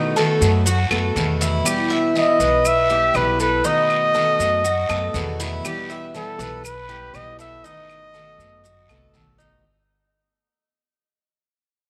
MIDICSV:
0, 0, Header, 1, 7, 480
1, 0, Start_track
1, 0, Tempo, 498753
1, 1594, Time_signature, 4, 2, 24, 8
1, 11443, End_track
2, 0, Start_track
2, 0, Title_t, "Trumpet"
2, 0, Program_c, 0, 56
2, 2083, Note_on_c, 0, 75, 101
2, 2564, Note_on_c, 0, 76, 117
2, 2579, Note_off_c, 0, 75, 0
2, 3038, Note_on_c, 0, 71, 99
2, 3052, Note_off_c, 0, 76, 0
2, 3275, Note_off_c, 0, 71, 0
2, 3279, Note_on_c, 0, 71, 91
2, 3522, Note_on_c, 0, 75, 98
2, 3536, Note_off_c, 0, 71, 0
2, 4958, Note_off_c, 0, 75, 0
2, 5925, Note_on_c, 0, 69, 89
2, 6368, Note_off_c, 0, 69, 0
2, 6404, Note_on_c, 0, 71, 98
2, 6879, Note_on_c, 0, 75, 111
2, 6894, Note_off_c, 0, 71, 0
2, 7111, Note_off_c, 0, 75, 0
2, 7117, Note_on_c, 0, 76, 97
2, 7355, Note_on_c, 0, 75, 104
2, 7370, Note_off_c, 0, 76, 0
2, 8799, Note_off_c, 0, 75, 0
2, 11443, End_track
3, 0, Start_track
3, 0, Title_t, "Cuban tres"
3, 0, Program_c, 1, 25
3, 0, Note_on_c, 1, 63, 87
3, 146, Note_off_c, 1, 63, 0
3, 157, Note_on_c, 1, 69, 73
3, 622, Note_off_c, 1, 69, 0
3, 633, Note_on_c, 1, 66, 75
3, 867, Note_off_c, 1, 66, 0
3, 874, Note_on_c, 1, 69, 80
3, 1339, Note_off_c, 1, 69, 0
3, 1357, Note_on_c, 1, 64, 91
3, 1588, Note_off_c, 1, 64, 0
3, 1590, Note_on_c, 1, 67, 75
3, 1824, Note_off_c, 1, 67, 0
3, 1830, Note_on_c, 1, 76, 80
3, 2297, Note_off_c, 1, 76, 0
3, 2310, Note_on_c, 1, 71, 76
3, 2777, Note_off_c, 1, 71, 0
3, 2790, Note_on_c, 1, 67, 86
3, 3256, Note_off_c, 1, 67, 0
3, 3271, Note_on_c, 1, 69, 85
3, 3504, Note_off_c, 1, 69, 0
3, 3507, Note_on_c, 1, 63, 91
3, 3975, Note_off_c, 1, 63, 0
3, 3989, Note_on_c, 1, 69, 67
3, 4457, Note_off_c, 1, 69, 0
3, 4469, Note_on_c, 1, 66, 70
3, 4704, Note_off_c, 1, 66, 0
3, 4709, Note_on_c, 1, 69, 80
3, 5177, Note_off_c, 1, 69, 0
3, 5194, Note_on_c, 1, 64, 95
3, 5427, Note_off_c, 1, 64, 0
3, 5440, Note_on_c, 1, 67, 80
3, 5670, Note_off_c, 1, 67, 0
3, 5675, Note_on_c, 1, 76, 77
3, 6141, Note_off_c, 1, 76, 0
3, 6151, Note_on_c, 1, 71, 79
3, 6620, Note_off_c, 1, 71, 0
3, 6632, Note_on_c, 1, 67, 87
3, 7100, Note_off_c, 1, 67, 0
3, 7110, Note_on_c, 1, 69, 88
3, 7346, Note_off_c, 1, 69, 0
3, 7355, Note_on_c, 1, 63, 94
3, 7823, Note_off_c, 1, 63, 0
3, 7832, Note_on_c, 1, 69, 64
3, 8302, Note_off_c, 1, 69, 0
3, 8313, Note_on_c, 1, 66, 62
3, 8549, Note_off_c, 1, 66, 0
3, 8559, Note_on_c, 1, 69, 79
3, 9025, Note_off_c, 1, 69, 0
3, 9031, Note_on_c, 1, 63, 88
3, 9269, Note_off_c, 1, 63, 0
3, 11443, End_track
4, 0, Start_track
4, 0, Title_t, "Steel-string acoustic guitar"
4, 0, Program_c, 2, 25
4, 0, Note_on_c, 2, 47, 74
4, 0, Note_on_c, 2, 51, 75
4, 0, Note_on_c, 2, 57, 69
4, 0, Note_on_c, 2, 59, 81
4, 0, Note_on_c, 2, 66, 74
4, 143, Note_off_c, 2, 47, 0
4, 151, Note_off_c, 2, 51, 0
4, 154, Note_off_c, 2, 57, 0
4, 154, Note_on_c, 2, 47, 76
4, 156, Note_off_c, 2, 59, 0
4, 158, Note_off_c, 2, 66, 0
4, 161, Note_on_c, 2, 51, 80
4, 167, Note_on_c, 2, 57, 76
4, 172, Note_on_c, 2, 59, 78
4, 174, Note_on_c, 2, 66, 91
4, 379, Note_off_c, 2, 66, 0
4, 386, Note_off_c, 2, 47, 0
4, 387, Note_off_c, 2, 59, 0
4, 389, Note_off_c, 2, 51, 0
4, 391, Note_on_c, 2, 66, 49
4, 392, Note_off_c, 2, 57, 0
4, 399, Note_on_c, 2, 59, 47
4, 406, Note_on_c, 2, 57, 44
4, 624, Note_off_c, 2, 66, 0
4, 628, Note_off_c, 2, 59, 0
4, 631, Note_off_c, 2, 57, 0
4, 874, Note_on_c, 2, 66, 51
4, 882, Note_on_c, 2, 59, 45
4, 889, Note_on_c, 2, 57, 44
4, 1105, Note_off_c, 2, 66, 0
4, 1109, Note_off_c, 2, 59, 0
4, 1112, Note_off_c, 2, 57, 0
4, 1116, Note_on_c, 2, 47, 70
4, 1119, Note_on_c, 2, 51, 71
4, 1127, Note_on_c, 2, 57, 79
4, 1130, Note_on_c, 2, 59, 71
4, 1134, Note_on_c, 2, 66, 68
4, 1581, Note_off_c, 2, 47, 0
4, 1587, Note_off_c, 2, 51, 0
4, 1590, Note_off_c, 2, 57, 0
4, 1592, Note_off_c, 2, 59, 0
4, 1592, Note_on_c, 2, 47, 74
4, 1594, Note_off_c, 2, 66, 0
4, 1595, Note_on_c, 2, 52, 66
4, 1599, Note_on_c, 2, 55, 72
4, 1604, Note_on_c, 2, 59, 68
4, 1606, Note_on_c, 2, 64, 79
4, 2060, Note_off_c, 2, 47, 0
4, 2064, Note_off_c, 2, 52, 0
4, 2066, Note_off_c, 2, 55, 0
4, 2068, Note_off_c, 2, 59, 0
4, 2070, Note_off_c, 2, 64, 0
4, 2072, Note_on_c, 2, 47, 76
4, 2075, Note_on_c, 2, 52, 76
4, 2081, Note_on_c, 2, 55, 79
4, 2084, Note_on_c, 2, 59, 85
4, 2089, Note_on_c, 2, 64, 84
4, 2297, Note_off_c, 2, 64, 0
4, 2303, Note_off_c, 2, 47, 0
4, 2304, Note_off_c, 2, 52, 0
4, 2305, Note_off_c, 2, 59, 0
4, 2307, Note_off_c, 2, 55, 0
4, 2316, Note_on_c, 2, 59, 50
4, 2326, Note_on_c, 2, 55, 41
4, 2545, Note_off_c, 2, 59, 0
4, 2547, Note_off_c, 2, 55, 0
4, 2785, Note_on_c, 2, 64, 46
4, 2797, Note_on_c, 2, 59, 43
4, 2805, Note_on_c, 2, 55, 45
4, 3017, Note_off_c, 2, 55, 0
4, 3019, Note_off_c, 2, 64, 0
4, 3019, Note_on_c, 2, 47, 66
4, 3024, Note_on_c, 2, 52, 75
4, 3025, Note_off_c, 2, 59, 0
4, 3028, Note_on_c, 2, 55, 83
4, 3035, Note_on_c, 2, 59, 74
4, 3038, Note_on_c, 2, 64, 78
4, 3491, Note_off_c, 2, 47, 0
4, 3499, Note_off_c, 2, 52, 0
4, 3501, Note_off_c, 2, 55, 0
4, 3502, Note_on_c, 2, 47, 73
4, 3504, Note_off_c, 2, 59, 0
4, 3506, Note_off_c, 2, 64, 0
4, 3506, Note_on_c, 2, 51, 72
4, 3509, Note_on_c, 2, 57, 72
4, 3514, Note_on_c, 2, 59, 70
4, 3520, Note_on_c, 2, 66, 81
4, 3969, Note_off_c, 2, 47, 0
4, 3976, Note_off_c, 2, 51, 0
4, 3980, Note_on_c, 2, 47, 72
4, 3981, Note_off_c, 2, 57, 0
4, 3984, Note_off_c, 2, 59, 0
4, 3987, Note_off_c, 2, 66, 0
4, 3988, Note_on_c, 2, 51, 84
4, 3991, Note_on_c, 2, 57, 78
4, 3995, Note_on_c, 2, 59, 83
4, 4000, Note_on_c, 2, 66, 92
4, 4213, Note_off_c, 2, 66, 0
4, 4217, Note_off_c, 2, 47, 0
4, 4221, Note_off_c, 2, 51, 0
4, 4222, Note_off_c, 2, 57, 0
4, 4224, Note_off_c, 2, 59, 0
4, 4224, Note_on_c, 2, 66, 55
4, 4235, Note_on_c, 2, 59, 47
4, 4241, Note_on_c, 2, 57, 42
4, 4459, Note_off_c, 2, 66, 0
4, 4461, Note_off_c, 2, 57, 0
4, 4464, Note_off_c, 2, 59, 0
4, 4704, Note_on_c, 2, 66, 47
4, 4712, Note_on_c, 2, 59, 50
4, 4722, Note_on_c, 2, 57, 42
4, 4939, Note_off_c, 2, 66, 0
4, 4943, Note_off_c, 2, 59, 0
4, 4946, Note_off_c, 2, 57, 0
4, 4947, Note_on_c, 2, 47, 80
4, 4953, Note_on_c, 2, 51, 74
4, 4957, Note_on_c, 2, 57, 70
4, 4960, Note_on_c, 2, 59, 74
4, 4963, Note_on_c, 2, 66, 79
4, 5421, Note_off_c, 2, 47, 0
4, 5424, Note_off_c, 2, 51, 0
4, 5426, Note_off_c, 2, 57, 0
4, 5428, Note_off_c, 2, 59, 0
4, 5429, Note_off_c, 2, 66, 0
4, 5434, Note_on_c, 2, 47, 72
4, 5439, Note_on_c, 2, 52, 71
4, 5443, Note_on_c, 2, 55, 72
4, 5447, Note_on_c, 2, 59, 81
4, 5452, Note_on_c, 2, 64, 80
4, 5901, Note_off_c, 2, 47, 0
4, 5903, Note_off_c, 2, 52, 0
4, 5910, Note_off_c, 2, 55, 0
4, 5912, Note_off_c, 2, 59, 0
4, 5913, Note_on_c, 2, 47, 73
4, 5914, Note_off_c, 2, 64, 0
4, 5915, Note_on_c, 2, 52, 80
4, 5922, Note_on_c, 2, 55, 83
4, 5925, Note_on_c, 2, 59, 84
4, 5931, Note_on_c, 2, 64, 81
4, 6144, Note_off_c, 2, 64, 0
4, 6145, Note_off_c, 2, 47, 0
4, 6146, Note_off_c, 2, 52, 0
4, 6149, Note_off_c, 2, 55, 0
4, 6151, Note_off_c, 2, 59, 0
4, 6155, Note_on_c, 2, 64, 59
4, 6162, Note_on_c, 2, 59, 45
4, 6171, Note_on_c, 2, 55, 46
4, 6381, Note_off_c, 2, 55, 0
4, 6383, Note_off_c, 2, 59, 0
4, 6386, Note_off_c, 2, 64, 0
4, 6626, Note_on_c, 2, 64, 51
4, 6637, Note_on_c, 2, 59, 41
4, 6644, Note_on_c, 2, 55, 45
4, 6862, Note_off_c, 2, 64, 0
4, 6866, Note_off_c, 2, 55, 0
4, 6867, Note_off_c, 2, 59, 0
4, 6869, Note_on_c, 2, 47, 77
4, 6874, Note_on_c, 2, 52, 75
4, 6878, Note_on_c, 2, 55, 74
4, 6882, Note_on_c, 2, 59, 72
4, 6885, Note_on_c, 2, 64, 82
4, 7340, Note_off_c, 2, 47, 0
4, 7346, Note_off_c, 2, 52, 0
4, 7348, Note_off_c, 2, 55, 0
4, 7351, Note_off_c, 2, 59, 0
4, 7352, Note_off_c, 2, 64, 0
4, 7352, Note_on_c, 2, 47, 72
4, 7357, Note_on_c, 2, 51, 78
4, 7362, Note_on_c, 2, 57, 74
4, 7366, Note_on_c, 2, 59, 87
4, 7368, Note_on_c, 2, 66, 76
4, 7818, Note_off_c, 2, 47, 0
4, 7825, Note_off_c, 2, 51, 0
4, 7827, Note_off_c, 2, 57, 0
4, 7829, Note_on_c, 2, 47, 68
4, 7833, Note_off_c, 2, 59, 0
4, 7834, Note_off_c, 2, 66, 0
4, 7837, Note_on_c, 2, 51, 79
4, 7839, Note_on_c, 2, 57, 87
4, 7843, Note_on_c, 2, 59, 84
4, 7849, Note_on_c, 2, 66, 83
4, 8062, Note_off_c, 2, 66, 0
4, 8065, Note_off_c, 2, 47, 0
4, 8068, Note_off_c, 2, 51, 0
4, 8069, Note_off_c, 2, 57, 0
4, 8071, Note_off_c, 2, 59, 0
4, 8073, Note_on_c, 2, 66, 50
4, 8083, Note_on_c, 2, 59, 46
4, 8087, Note_on_c, 2, 57, 45
4, 8307, Note_off_c, 2, 66, 0
4, 8308, Note_off_c, 2, 57, 0
4, 8311, Note_off_c, 2, 59, 0
4, 8553, Note_on_c, 2, 66, 47
4, 8563, Note_on_c, 2, 59, 46
4, 8570, Note_on_c, 2, 57, 41
4, 8787, Note_off_c, 2, 66, 0
4, 8791, Note_off_c, 2, 57, 0
4, 8792, Note_off_c, 2, 59, 0
4, 8795, Note_on_c, 2, 47, 70
4, 8800, Note_on_c, 2, 51, 69
4, 8803, Note_on_c, 2, 57, 65
4, 8807, Note_on_c, 2, 59, 79
4, 8810, Note_on_c, 2, 66, 81
4, 9268, Note_off_c, 2, 47, 0
4, 9271, Note_off_c, 2, 51, 0
4, 9272, Note_off_c, 2, 57, 0
4, 9274, Note_off_c, 2, 59, 0
4, 9276, Note_off_c, 2, 66, 0
4, 11443, End_track
5, 0, Start_track
5, 0, Title_t, "Upright bass"
5, 0, Program_c, 3, 32
5, 396, Note_on_c, 3, 42, 94
5, 842, Note_off_c, 3, 42, 0
5, 872, Note_on_c, 3, 42, 71
5, 1097, Note_off_c, 3, 42, 0
5, 1113, Note_on_c, 3, 40, 96
5, 1537, Note_off_c, 3, 40, 0
5, 2306, Note_on_c, 3, 35, 93
5, 2990, Note_off_c, 3, 35, 0
5, 3030, Note_on_c, 3, 35, 94
5, 3455, Note_off_c, 3, 35, 0
5, 4227, Note_on_c, 3, 42, 90
5, 4676, Note_off_c, 3, 42, 0
5, 4711, Note_on_c, 3, 42, 74
5, 4935, Note_off_c, 3, 42, 0
5, 4948, Note_on_c, 3, 40, 102
5, 5375, Note_off_c, 3, 40, 0
5, 6147, Note_on_c, 3, 35, 99
5, 6834, Note_off_c, 3, 35, 0
5, 6868, Note_on_c, 3, 35, 93
5, 7297, Note_off_c, 3, 35, 0
5, 8067, Note_on_c, 3, 42, 91
5, 8520, Note_off_c, 3, 42, 0
5, 8550, Note_on_c, 3, 36, 78
5, 8778, Note_off_c, 3, 36, 0
5, 8789, Note_on_c, 3, 35, 97
5, 9219, Note_off_c, 3, 35, 0
5, 11443, End_track
6, 0, Start_track
6, 0, Title_t, "Muted steel-string acoustic guitar strokes"
6, 636, Note_on_c, 9, 29, 61
6, 732, Note_off_c, 9, 29, 0
6, 2555, Note_on_c, 9, 29, 57
6, 2651, Note_off_c, 9, 29, 0
6, 4468, Note_on_c, 9, 29, 57
6, 4565, Note_off_c, 9, 29, 0
6, 6388, Note_on_c, 9, 29, 63
6, 6484, Note_off_c, 9, 29, 0
6, 8315, Note_on_c, 9, 29, 64
6, 8411, Note_off_c, 9, 29, 0
6, 11443, End_track
7, 0, Start_track
7, 0, Title_t, "Drums"
7, 158, Note_on_c, 9, 70, 29
7, 162, Note_on_c, 9, 73, 73
7, 255, Note_off_c, 9, 70, 0
7, 258, Note_off_c, 9, 73, 0
7, 402, Note_on_c, 9, 70, 73
7, 402, Note_on_c, 9, 73, 72
7, 498, Note_off_c, 9, 70, 0
7, 499, Note_off_c, 9, 73, 0
7, 638, Note_on_c, 9, 74, 71
7, 641, Note_on_c, 9, 70, 89
7, 734, Note_off_c, 9, 74, 0
7, 738, Note_off_c, 9, 70, 0
7, 876, Note_on_c, 9, 75, 73
7, 880, Note_on_c, 9, 70, 33
7, 972, Note_off_c, 9, 75, 0
7, 976, Note_off_c, 9, 70, 0
7, 1119, Note_on_c, 9, 73, 74
7, 1122, Note_on_c, 9, 70, 31
7, 1215, Note_off_c, 9, 73, 0
7, 1218, Note_off_c, 9, 70, 0
7, 1354, Note_on_c, 9, 73, 63
7, 1362, Note_on_c, 9, 70, 75
7, 1450, Note_off_c, 9, 73, 0
7, 1459, Note_off_c, 9, 70, 0
7, 1593, Note_on_c, 9, 74, 73
7, 1597, Note_on_c, 9, 75, 70
7, 1598, Note_on_c, 9, 70, 91
7, 1689, Note_off_c, 9, 74, 0
7, 1693, Note_off_c, 9, 75, 0
7, 1694, Note_off_c, 9, 70, 0
7, 1840, Note_on_c, 9, 70, 27
7, 1937, Note_off_c, 9, 70, 0
7, 2074, Note_on_c, 9, 73, 74
7, 2081, Note_on_c, 9, 70, 29
7, 2171, Note_off_c, 9, 73, 0
7, 2177, Note_off_c, 9, 70, 0
7, 2313, Note_on_c, 9, 70, 73
7, 2314, Note_on_c, 9, 73, 72
7, 2409, Note_off_c, 9, 70, 0
7, 2410, Note_off_c, 9, 73, 0
7, 2551, Note_on_c, 9, 70, 88
7, 2552, Note_on_c, 9, 75, 70
7, 2553, Note_on_c, 9, 74, 72
7, 2647, Note_off_c, 9, 70, 0
7, 2649, Note_off_c, 9, 75, 0
7, 2650, Note_off_c, 9, 74, 0
7, 2789, Note_on_c, 9, 70, 28
7, 2885, Note_off_c, 9, 70, 0
7, 3029, Note_on_c, 9, 73, 71
7, 3030, Note_on_c, 9, 70, 31
7, 3030, Note_on_c, 9, 75, 71
7, 3126, Note_off_c, 9, 70, 0
7, 3126, Note_off_c, 9, 73, 0
7, 3127, Note_off_c, 9, 75, 0
7, 3269, Note_on_c, 9, 70, 73
7, 3270, Note_on_c, 9, 73, 67
7, 3366, Note_off_c, 9, 70, 0
7, 3366, Note_off_c, 9, 73, 0
7, 3507, Note_on_c, 9, 74, 79
7, 3508, Note_on_c, 9, 70, 91
7, 3603, Note_off_c, 9, 74, 0
7, 3604, Note_off_c, 9, 70, 0
7, 3753, Note_on_c, 9, 75, 73
7, 3755, Note_on_c, 9, 70, 33
7, 3849, Note_off_c, 9, 75, 0
7, 3851, Note_off_c, 9, 70, 0
7, 3992, Note_on_c, 9, 73, 75
7, 3996, Note_on_c, 9, 70, 26
7, 4088, Note_off_c, 9, 73, 0
7, 4092, Note_off_c, 9, 70, 0
7, 4230, Note_on_c, 9, 73, 77
7, 4236, Note_on_c, 9, 70, 81
7, 4326, Note_off_c, 9, 73, 0
7, 4332, Note_off_c, 9, 70, 0
7, 4471, Note_on_c, 9, 74, 70
7, 4474, Note_on_c, 9, 70, 92
7, 4568, Note_off_c, 9, 74, 0
7, 4570, Note_off_c, 9, 70, 0
7, 4713, Note_on_c, 9, 75, 71
7, 4716, Note_on_c, 9, 70, 31
7, 4810, Note_off_c, 9, 75, 0
7, 4812, Note_off_c, 9, 70, 0
7, 4950, Note_on_c, 9, 73, 70
7, 4961, Note_on_c, 9, 70, 32
7, 5047, Note_off_c, 9, 73, 0
7, 5057, Note_off_c, 9, 70, 0
7, 5196, Note_on_c, 9, 73, 68
7, 5197, Note_on_c, 9, 70, 72
7, 5292, Note_off_c, 9, 73, 0
7, 5293, Note_off_c, 9, 70, 0
7, 5434, Note_on_c, 9, 74, 72
7, 5436, Note_on_c, 9, 75, 70
7, 5437, Note_on_c, 9, 70, 92
7, 5531, Note_off_c, 9, 74, 0
7, 5532, Note_off_c, 9, 75, 0
7, 5533, Note_off_c, 9, 70, 0
7, 5682, Note_on_c, 9, 70, 32
7, 5778, Note_off_c, 9, 70, 0
7, 5916, Note_on_c, 9, 73, 70
7, 5922, Note_on_c, 9, 70, 28
7, 6012, Note_off_c, 9, 73, 0
7, 6018, Note_off_c, 9, 70, 0
7, 6156, Note_on_c, 9, 73, 72
7, 6162, Note_on_c, 9, 70, 77
7, 6252, Note_off_c, 9, 73, 0
7, 6258, Note_off_c, 9, 70, 0
7, 6398, Note_on_c, 9, 74, 74
7, 6398, Note_on_c, 9, 75, 63
7, 6402, Note_on_c, 9, 70, 102
7, 6495, Note_off_c, 9, 74, 0
7, 6495, Note_off_c, 9, 75, 0
7, 6498, Note_off_c, 9, 70, 0
7, 6640, Note_on_c, 9, 70, 30
7, 6736, Note_off_c, 9, 70, 0
7, 6875, Note_on_c, 9, 73, 71
7, 6878, Note_on_c, 9, 75, 69
7, 6881, Note_on_c, 9, 70, 33
7, 6971, Note_off_c, 9, 73, 0
7, 6974, Note_off_c, 9, 75, 0
7, 6977, Note_off_c, 9, 70, 0
7, 7116, Note_on_c, 9, 73, 67
7, 7121, Note_on_c, 9, 70, 76
7, 7212, Note_off_c, 9, 73, 0
7, 7217, Note_off_c, 9, 70, 0
7, 7356, Note_on_c, 9, 74, 83
7, 7364, Note_on_c, 9, 70, 85
7, 7453, Note_off_c, 9, 74, 0
7, 7461, Note_off_c, 9, 70, 0
7, 7598, Note_on_c, 9, 75, 68
7, 7606, Note_on_c, 9, 70, 30
7, 7694, Note_off_c, 9, 75, 0
7, 7702, Note_off_c, 9, 70, 0
7, 7838, Note_on_c, 9, 73, 74
7, 7846, Note_on_c, 9, 70, 28
7, 7935, Note_off_c, 9, 73, 0
7, 7942, Note_off_c, 9, 70, 0
7, 8080, Note_on_c, 9, 73, 76
7, 8087, Note_on_c, 9, 70, 74
7, 8176, Note_off_c, 9, 73, 0
7, 8183, Note_off_c, 9, 70, 0
7, 8315, Note_on_c, 9, 74, 70
7, 8326, Note_on_c, 9, 70, 93
7, 8411, Note_off_c, 9, 74, 0
7, 8422, Note_off_c, 9, 70, 0
7, 8560, Note_on_c, 9, 75, 73
7, 8565, Note_on_c, 9, 70, 30
7, 8656, Note_off_c, 9, 75, 0
7, 8662, Note_off_c, 9, 70, 0
7, 8794, Note_on_c, 9, 73, 67
7, 8807, Note_on_c, 9, 70, 31
7, 8891, Note_off_c, 9, 73, 0
7, 8903, Note_off_c, 9, 70, 0
7, 9039, Note_on_c, 9, 73, 69
7, 9045, Note_on_c, 9, 70, 74
7, 9135, Note_off_c, 9, 73, 0
7, 9142, Note_off_c, 9, 70, 0
7, 11443, End_track
0, 0, End_of_file